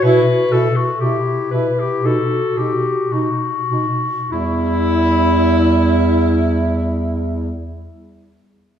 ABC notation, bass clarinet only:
X:1
M:4/4
L:1/8
Q:1/4=53
K:Em
V:1 name="Bass clarinet" clef=bass
B,, B,, B,, B,, B,, B,, B,, B,, | E,,8 |]